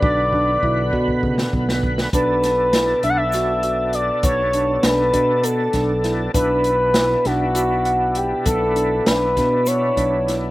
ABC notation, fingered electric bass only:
X:1
M:7/8
L:1/8
Q:1/4=100
K:Bm
V:1 name="Fingered electric bass" clef=bass
B,,,2 B,,, B,,2 B,,,2 | B,,,3 B,,,4 | B,,,2 B,,, B,,2 B,,,2 | B,,,3 B,,,4 |
B,,,2 B,,, B,,2 B,,,2 |]